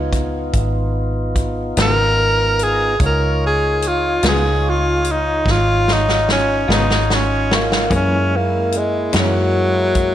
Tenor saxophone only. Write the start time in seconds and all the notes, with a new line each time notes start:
1.82 A#4
2.63 G#4
3.06 A#4
3.47 G#4
3.87 F4
4.28 G#4
4.69 F4
5.11 D#4
5.52 F4
5.93 D#4
6.32 C#4
6.74 D#4
7.14 C#4
7.55 A#3
7.96 C#4
8.36 A#3
8.78 G#3
9.19 F#3